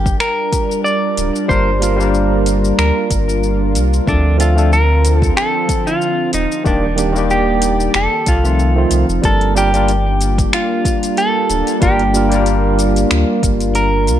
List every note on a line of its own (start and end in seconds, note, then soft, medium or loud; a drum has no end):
0.00 0.15 G1 medium
0.00 4.04 G3 medium
0.00 4.04 D4 medium
0.00 6.30 F4 medium
0.00 0.20 G4 medium
0.00 4.04 A#4 medium
0.06 kick loud
0.06 shaker soft
0.20 0.81 A#4 loud
0.20 finger snap medium
0.20 shaker soft
0.53 kick loud
0.53 closed hi-hat medium
0.53 shaker medium
0.71 shaker soft
0.84 1.49 D5 loud
0.84 shaker soft
1.17 1.31 D1 medium
1.17 closed hi-hat medium
1.17 shaker medium
1.36 shaker soft
1.48 2.73 G1 medium
1.48 1.68 G3 medium
1.48 1.68 A#3 medium
1.48 1.69 D4 medium
1.48 1.69 F4 medium
1.48 1.70 A#4 loud
1.48 2.74 C5 loud
1.48 kick loud
1.48 shaker soft
1.80 1.95 G3 medium
1.80 1.96 A#3 medium
1.80 1.97 D4 medium
1.80 1.97 F4 medium
1.80 1.98 A#4 medium
1.80 closed hi-hat medium
1.80 shaker medium
1.96 4.02 G3 medium
1.96 4.03 A#3 medium
1.96 4.04 D4 medium
2.00 4.05 F4 medium
2.00 4.06 A#4 medium
2.00 shaker soft
2.14 shaker soft
2.46 closed hi-hat medium
2.46 shaker medium
2.65 shaker soft
2.78 2.92 D2 medium
2.78 3.71 A#4 medium
2.78 finger snap medium
2.78 shaker soft
3.10 3.76 G1 medium
3.10 kick medium
3.10 closed hi-hat medium
3.10 shaker medium
3.29 shaker soft
3.43 shaker soft
3.75 4.00 C2 medium
3.75 closed hi-hat medium
3.75 shaker medium
3.93 shaker soft
4.06 5.31 D2 loud
4.06 6.32 D3 medium
4.06 4.35 F3 medium
4.06 6.32 F3 medium
4.06 4.36 A3 medium
4.06 4.36 C4 medium
4.06 6.32 C4 medium
4.06 4.37 D4 medium
4.06 4.40 D4 medium
4.06 4.37 A4 medium
4.06 kick loud
4.06 shaker soft
4.38 4.52 F3 medium
4.38 4.53 A3 medium
4.38 4.53 C4 medium
4.38 4.53 D4 medium
4.38 4.70 F4 medium
4.38 4.54 A4 medium
4.38 closed hi-hat medium
4.38 shaker medium
4.55 4.73 F3 medium
4.55 4.73 A3 medium
4.55 4.73 C4 medium
4.55 4.74 D4 medium
4.55 4.75 A4 medium
4.55 shaker soft
4.73 5.16 A#4 loud
4.73 shaker soft
5.05 closed hi-hat medium
5.05 shaker medium
5.16 5.33 A4 loud
5.22 kick loud
5.22 shaker soft
5.37 5.88 A4 loud
5.37 finger snap medium
5.37 shaker soft
5.69 kick loud
5.69 closed hi-hat medium
5.69 shaker medium
5.87 6.34 F4 loud
5.87 shaker soft
6.02 shaker soft
6.33 6.47 D#1 medium
6.33 7.93 D#3 medium
6.33 7.93 A#3 medium
6.33 6.67 D#4 medium
6.33 7.93 G4 medium
6.33 7.93 D5 medium
6.33 closed hi-hat medium
6.33 shaker medium
6.52 shaker soft
6.64 7.89 D#1 loud
6.64 6.84 D#3 loud
6.64 6.84 G3 medium
6.64 6.85 A#3 medium
6.64 6.85 D4 medium
6.64 7.33 D4 medium
6.64 6.86 G4 loud
6.64 kick loud
6.64 shaker soft
6.96 7.11 D#3 medium
6.96 7.12 G3 medium
6.96 7.13 A#3 medium
6.96 7.13 D4 medium
6.96 7.13 G4 medium
6.96 closed hi-hat medium
6.96 shaker medium
7.12 7.91 D#3 medium
7.12 7.92 G3 medium
7.12 7.93 A#3 medium
7.12 shaker soft
7.17 7.94 D4 medium
7.17 7.94 G4 medium
7.30 7.95 G4 medium
7.30 shaker soft
7.62 closed hi-hat loud
7.62 shaker medium
7.80 shaker soft
7.94 8.08 F1 medium
7.94 9.22 F3 medium
7.94 9.22 C4 medium
7.94 9.23 D#4 medium
7.94 9.23 A4 medium
7.94 8.88 A4 medium
7.94 finger snap medium
7.94 shaker soft
8.26 8.86 C2 medium
8.26 9.27 F4 medium
8.26 kick medium
8.26 closed hi-hat medium
8.26 shaker medium
8.43 8.72 D#3 medium
8.43 8.72 F3 medium
8.43 8.73 A3 medium
8.43 8.73 C4 medium
8.43 8.73 F4 medium
8.43 shaker soft
8.59 shaker soft
8.75 9.04 D#3 medium
8.75 9.05 F3 medium
8.75 9.05 A3 medium
8.75 9.05 C4 medium
8.75 9.06 F4 medium
8.91 9.04 C2 loud
8.91 closed hi-hat medium
8.91 shaker medium
9.09 9.20 F1 medium
9.09 shaker soft
9.22 10.47 G1 loud
9.22 9.52 G3 medium
9.22 14.20 G3 medium
9.22 9.52 A#3 medium
9.22 14.20 A#3 medium
9.22 9.52 D4 medium
9.22 14.20 D4 medium
9.22 14.20 F4 medium
9.22 9.53 F4 medium
9.22 9.57 A4 loud
9.22 9.53 A#4 medium
9.22 kick loud
9.22 closed hi-hat medium
9.22 shaker soft
9.41 closed hi-hat soft
9.55 9.69 G3 medium
9.55 9.69 A#3 medium
9.55 9.70 D4 medium
9.55 9.70 F4 medium
9.55 10.56 G4 loud
9.55 9.70 A#4 medium
9.55 shaker medium
9.73 9.90 G3 medium
9.73 9.90 A#3 medium
9.73 9.91 D4 medium
9.73 9.91 F4 medium
9.73 9.92 A#4 medium
9.73 closed hi-hat soft
9.73 shaker soft
9.88 closed hi-hat medium
9.88 shaker soft
10.21 closed hi-hat soft
10.21 shaker medium
10.38 kick loud
10.38 closed hi-hat soft
10.38 shaker soft
10.53 11.20 F4 loud
10.53 finger snap medium
10.53 closed hi-hat medium
10.53 shaker soft
10.85 kick loud
10.85 closed hi-hat medium
10.85 shaker medium
11.03 closed hi-hat soft
11.03 shaker soft
11.17 11.82 A4 loud
11.17 closed hi-hat medium
11.17 shaker soft
11.49 11.63 D1 medium
11.49 closed hi-hat soft
11.49 shaker medium
11.67 closed hi-hat soft
11.67 shaker soft
11.81 13.05 G1 loud
11.81 12.00 G3 medium
11.81 12.01 A#3 medium
11.81 12.01 D4 medium
11.81 12.02 F4 medium
11.81 12.43 G4 medium
11.81 12.02 A#4 loud
11.81 kick loud
11.81 closed hi-hat medium
11.81 shaker soft
11.99 closed hi-hat soft
12.14 12.28 G3 medium
12.14 12.29 A#3 medium
12.14 12.30 D4 medium
12.14 12.30 F4 medium
12.14 12.30 A#4 medium
12.14 shaker medium
12.29 14.20 G3 medium
12.29 14.20 A#3 medium
12.29 14.20 D4 medium
12.29 closed hi-hat soft
12.29 shaker soft
12.34 14.20 F4 medium
12.34 14.20 A#4 loud
12.46 closed hi-hat medium
12.46 shaker soft
12.79 closed hi-hat soft
12.79 shaker medium
12.96 closed hi-hat soft
12.96 shaker soft
13.11 13.24 D2 medium
13.11 finger snap medium
13.11 closed hi-hat medium
13.11 shaker soft
13.43 14.09 G1 medium
13.43 kick loud
13.43 closed hi-hat medium
13.43 shaker medium
13.61 closed hi-hat soft
13.61 shaker soft
13.75 14.20 A#4 loud
13.75 closed hi-hat medium
13.75 shaker soft
14.07 14.20 C2 medium
14.07 closed hi-hat soft
14.07 shaker medium